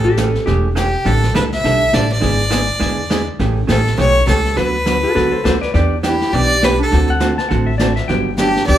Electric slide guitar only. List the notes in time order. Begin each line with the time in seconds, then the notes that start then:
0.05 G4
0.18 A4
0.46 G4
5.03 F#4 A4
5.15 F#4 A4
5.31 A4 C5
5.44 A4 C5
5.61 B4 D5
5.74 D5
7.10 F#5
7.38 A5
7.49 F#5
7.66 E5
7.78 D5
7.96 E5
8.08 G5